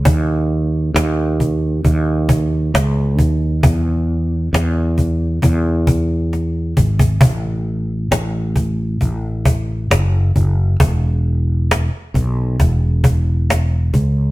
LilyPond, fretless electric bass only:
\new Staff \with { instrumentName = "Fretless electric bass" } { \clef bass \time 4/4 \key e \major \tempo 4 = 67 dis,4 dis,4 dis,4 cis,8 dis,8 | e,4 e,4 e,4. gis,,8 | a,,4 a,,4 a,,4 fis,,8 fis,,8 | e,,4~ e,,16 r16 b,,8 e,,4. cis,8 | }